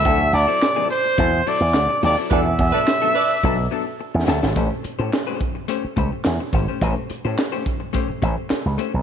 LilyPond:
<<
  \new Staff \with { instrumentName = "Trumpet" } { \time 4/4 \key e \dorian \tempo 4 = 106 e''8 d''4 c''4 d''4 d''8 | e''2. r4 | r1 | r1 | }
  \new Staff \with { instrumentName = "Horn section" } { \time 4/4 \key e \dorian r1 | <a' b' d''>16 r8 <a' b' d''>16 r8 <a' b' d''>8 r2 | r1 | r1 | }
  \new Staff \with { instrumentName = "Hollow-body jazz guitar" } { \time 4/4 \key e \dorian <fis c' e' a'>16 r8 <fis c' e' a'>16 r16 <fis c' e' a'>16 r8 <fis c' e' a'>16 r16 <fis c' e' a'>16 r8. <fis c' e' a'>16 <fis c' e' a'>16 | <fis b d' a'>16 r8 <fis b d' a'>16 r16 <fis b d' a'>16 r8 <fis b d' a'>16 r16 <fis b d' a'>16 r8. <fis b d' a'>16 <fis b d' a'>16 | <a cis' g' bis'>16 r8 <a cis' g' bis'>16 r16 <a cis' g' bis'>16 r8 <a cis' g' bis'>16 r16 <a cis' g' bis'>16 r8. <a cis' g' bis'>16 <a cis' g' bis'>16 | <a cis' g' bis'>16 r8 <a cis' g' bis'>16 r16 <a cis' g' bis'>16 r8 <a cis' g' bis'>16 r16 <a cis' g' bis'>16 r8. <a cis' g' bis'>16 r16 | }
  \new Staff \with { instrumentName = "Slap bass" } { \clef bass \time 4/4 \key e \dorian d,8 d,16 r4 r16 e,8 r16 e,16 d,16 r16 dis,16 r16 | e,8 e,16 r4 r16 b,,8 r8. e,16 d,16 gis,,16 | a,,16 r8 a,16 r4. cis,16 r16 e,16 r16 gis,,16 r16 | a,,16 r8 a,16 r4. a,,16 r8 cis,16 r16 b,,16 | }
  \new DrumStaff \with { instrumentName = "Drums" } \drummode { \time 4/4 <hh bd>8 hho8 <hc hh sn>8 hho8 <hh bd>8 hho8 <hc hh sn>8 hho8 | <hh bd>8 <hho bd>8 <hc hh sn>8 hho8 bd4 r8 sn16 sn16 | <hh bd>8 hh8 <hc hh sn>8 <hh bd>8 hh8 <hh bd>8 <hc hh sn>8 <hh bd>8 | <hh bd>8 hh8 <hc hh sn>8 <hh bd>8 <hh bd>8 <hh bd>8 <hc hh sn>8 hh8 | }
>>